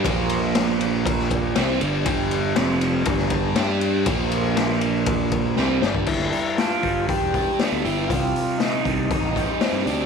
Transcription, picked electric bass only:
0.04 1.52 A#1 medium
1.57 1.80 C2 medium
1.81 2.05 G1 loud
2.06 2.53 G1 medium
2.57 3.04 F1 medium
3.06 3.54 G1 medium
3.58 4.05 G2 medium
4.06 5.54 A#1 medium
5.58 5.81 C2 medium
5.82 6.06 G1 medium
6.08 6.31 G1 medium
6.83 7.06 G1 medium
7.22 7.44 E1 medium
7.72 7.84 D2 medium
7.85 8.08 G1 medium
8.10 8.32 C2 medium
8.86 9.08 C2 medium
9.22 9.45 A1 medium
9.72 9.84 G2 medium
9.86 10.06 D2 medium

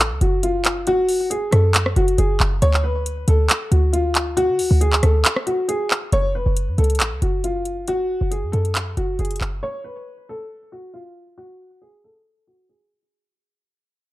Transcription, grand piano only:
0.00 0.19 A4 medium
0.21 0.40 F#4 medium
0.43 0.84 F4 medium
0.87 1.28 F#4 loud
1.30 1.49 G#4 medium
1.51 1.93 A4 medium
1.97 2.15 F#4 medium
2.18 2.37 G#4 medium
2.62 2.81 C#5 loud
2.83 3.25 B4 medium
3.29 3.69 A4 medium
3.71 3.90 F#4 medium
3.93 4.34 F4 medium
4.37 4.78 F#4 loud
4.81 4.99 G#4 medium
5.03 5.44 A4 medium
5.47 5.65 F#4 medium
5.68 5.87 G#4 medium
6.13 6.31 C#5 loud
6.35 6.76 B4 medium
6.78 7.19 A4 medium
7.22 7.41 F#4 medium
7.44 7.85 F4 medium
7.88 8.29 F#4 loud
8.31 8.50 G#4 medium
8.52 8.94 A4 medium
8.97 9.16 F#4 medium
9.19 9.38 G#4 medium
9.63 9.81 C#5 loud
9.84 10.26 B4 medium
10.29 10.70 A4 medium
10.72 10.91 F#4 medium
10.94 11.35 F4 medium
11.38 11.79 F#4 loud
11.82 12.00 G#4 medium
12.04 12.45 A4 medium
12.47 12.66 F#4 medium
12.69 12.88 G#4 medium

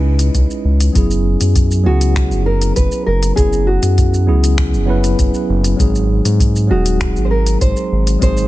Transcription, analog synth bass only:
0.00 0.30 C#2 medium
0.35 0.47 C#2 medium
0.65 0.90 C#2 medium
0.95 1.36 F#1 loud
1.41 1.87 F#2 medium
1.86 2.33 C#2 medium
2.31 2.72 F#1 medium
2.77 2.89 F#1 medium
3.07 3.32 F#1 medium
3.38 3.79 F#1 loud
3.83 4.29 F#2 medium
4.28 4.75 C#2 medium
4.74 5.15 F#1 loud
5.19 5.32 F#1 medium
5.49 5.74 F#1 loud
5.79 6.21 G#1 loud
6.25 6.72 G#2 medium
6.70 7.17 D#1 medium
7.16 7.57 G#1 loud
7.61 7.74 G#1 medium
7.92 8.17 G#1 medium
8.22 8.48 G#1 medium

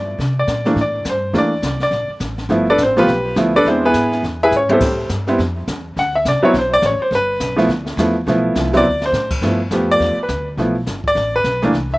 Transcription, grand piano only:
0.00 0.35 D5 medium
0.39 0.65 D5 medium
0.66 0.76 E3 medium
0.66 0.76 A3 medium
0.66 0.76 A#3 medium
0.66 0.76 D4 medium
0.81 1.06 D5 medium
1.09 1.34 C5 medium
1.34 1.50 E3 medium
1.34 1.50 A3 medium
1.34 1.50 A#3 medium
1.34 1.50 D4 medium
1.38 1.80 D5 medium
1.83 2.09 D5 medium
2.50 2.65 F3 medium
2.50 2.66 A3 medium
2.50 2.66 B3 medium
2.50 2.66 E4 medium
2.70 2.80 D4 medium
2.70 2.80 A4 medium
2.70 2.80 B4 medium
2.70 2.80 D5 medium
2.83 2.98 C4 medium
2.83 2.98 C5 medium
2.97 3.07 F3 medium
2.97 3.07 A3 medium
2.97 3.07 B3 medium
2.97 3.07 F4 medium
2.97 3.35 G4 medium
2.97 3.35 B4 medium
3.36 3.52 F3 medium
3.36 3.52 A3 medium
3.36 3.52 B3 medium
3.36 3.53 E4 medium
3.56 3.65 D4 medium
3.56 3.66 A4 medium
3.56 3.66 B4 medium
3.56 3.66 D5 loud
3.66 3.82 G#3 medium
3.66 3.82 B3 medium
3.66 3.84 C4 medium
3.66 3.82 D4 medium
3.66 3.82 E4 medium
3.66 3.84 C5 medium
3.85 4.22 B3 medium
3.85 4.22 E4 medium
3.85 4.22 G#4 medium
3.85 4.22 B4 medium
4.43 4.53 E4 medium
4.43 4.53 G#4 medium
4.43 4.53 B4 medium
4.43 4.53 E5 loud
4.56 4.71 C#4 medium
4.56 4.71 C#5 medium
4.69 4.80 G3 medium
4.69 4.80 B3 medium
4.69 4.80 C4 medium
4.69 4.80 E4 medium
4.69 5.09 G4 medium
4.69 5.09 A4 medium
4.69 5.08 C5 medium
5.28 5.38 G3 medium
5.28 5.38 B3 medium
5.28 5.38 C4 medium
5.28 5.38 E4 medium
5.99 6.14 F#5 medium
6.15 6.26 E5 medium
6.28 6.44 D5 medium
6.42 6.53 F#3 medium
6.42 6.53 B3 medium
6.42 6.53 C4 medium
6.42 6.53 E4 medium
6.42 6.55 C#5 medium
6.59 6.73 C5 medium
6.74 6.84 D5 loud
6.86 7.01 C#5 medium
7.02 7.12 C5 medium
7.15 7.56 B4 medium
7.56 7.67 F3 medium
7.56 7.68 A3 medium
7.56 7.68 B3 medium
7.56 7.68 E4 medium
7.99 8.14 F3 medium
7.99 8.14 A3 medium
7.99 8.14 B3 medium
7.99 8.14 E4 medium
8.28 8.70 F3 medium
8.28 8.70 A3 medium
8.28 8.70 B3 medium
8.28 8.71 E4 medium
8.73 8.83 F#3 medium
8.73 8.84 B3 medium
8.73 8.84 C4 medium
8.73 8.84 E4 medium
8.73 9.02 D5 loud
9.06 9.31 C5 medium
9.43 9.58 F3 medium
9.43 9.58 A3 medium
9.43 9.58 B3 medium
9.43 9.59 E4 medium
9.72 10.14 F3 medium
9.72 10.15 A3 soft
9.72 10.15 B3 medium
9.72 10.15 G4 medium
9.91 10.17 D5 loud
10.23 10.47 B4 medium
10.58 10.74 F3 medium
10.58 10.74 A3 soft
10.58 10.74 B3 soft
10.58 10.74 E4 medium
11.08 11.33 D5 loud
11.36 11.61 B4 medium
11.63 11.73 E3 medium
11.63 11.73 A3 medium
11.63 11.73 A#3 medium
11.63 11.73 D4 medium
11.94 11.98 E5 medium

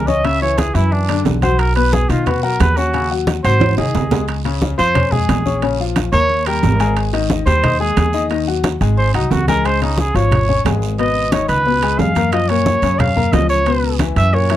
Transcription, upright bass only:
0.00 0.69 C#2 medium
0.75 1.22 F#2 medium
1.25 2.04 B1 medium
2.09 2.56 B2 medium
2.60 3.38 D#2 medium
3.44 3.76 G#1 loud
3.78 3.93 C2 medium
3.95 4.73 C#2 medium
4.79 5.26 F2 medium
5.29 6.07 A#1 medium
6.12 6.59 D#2 loud
6.63 7.41 G#1 loud
7.46 7.93 D#2 loud
7.97 8.75 D#2 loud
8.81 9.12 G#1 medium
9.14 9.30 C2 medium
9.31 10.09 C#2 loud
10.15 10.62 G#1 medium
10.65 11.43 G#1 medium
11.49 11.96 C#2 loud
11.99 12.77 F#2 medium
12.82 13.29 F#2 medium
13.32 14.11 C#2 medium
14.16 14.57 F#2 medium

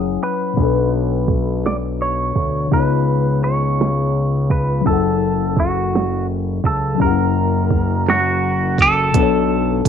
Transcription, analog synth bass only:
0.00 0.18 F#1 medium
0.58 2.32 B1 loud
2.36 2.68 D2 medium
2.73 4.82 C#2 loud
4.87 6.61 F#1 loud
6.64 6.97 C#2 medium
7.01 9.11 F#1 loud
9.15 9.82 B1 loud

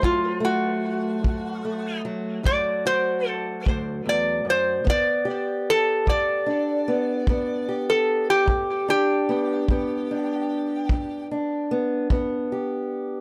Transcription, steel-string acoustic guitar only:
0.00 0.74 D2 medium
0.00 2.04 F#3 medium
0.00 0.39 A3 medium
0.40 1.63 A3 medium
1.23 1.96 D2 medium
1.65 4.86 A3 medium
2.05 2.43 F#3 medium
2.43 3.16 D2 medium
2.43 4.84 F#3 medium
2.86 4.81 F#4 medium
3.66 4.05 D2 medium
4.06 4.44 E2 medium
4.45 4.84 F#2 medium
4.84 5.57 G2 medium
4.84 6.87 B3 medium
5.25 7.67 G4 medium
6.06 6.79 G2 medium
6.46 8.88 D4 medium
6.88 7.29 B3 medium
7.28 8.00 G2 medium
7.28 9.28 B3 medium
7.69 9.64 G4 medium
8.46 9.19 G2 medium
8.88 10.11 D4 medium
9.29 9.64 B3 medium
9.70 10.42 G2 medium
9.70 11.70 B3 medium
10.11 11.31 D4 medium
10.89 11.62 G2 medium
11.31 13.21 D4 medium
11.71 12.10 B3 medium
12.10 12.82 G2 medium
12.10 13.21 B3 medium
12.52 13.21 G4 medium

